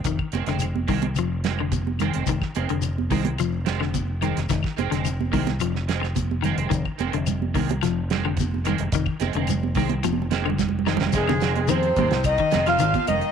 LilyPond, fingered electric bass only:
\new Staff \with { instrumentName = "Fingered electric bass" } { \clef bass \time 4/4 \key f \dorian \tempo 4 = 108 f,,16 r16 f,,16 f,,8. c,8 f,,4.~ f,,16 f,,16 | f,,16 r16 f,,16 f,,8. c,8 f,,4.~ f,,16 f,,16 | f,,16 r16 f,,16 f,,8. c,8 f,,4.~ f,,16 f,,16 | f,,16 r16 f,,16 f,,8. c,8 f,,4.~ f,,16 f,,16 |
f,,16 r16 f,,16 f,,8. c,8 f,,4.~ f,,16 f,,16 | f,,4 f,8 ees,16 c,8 r16 f,,8 aes,,16 r16 f,,16 r16 | }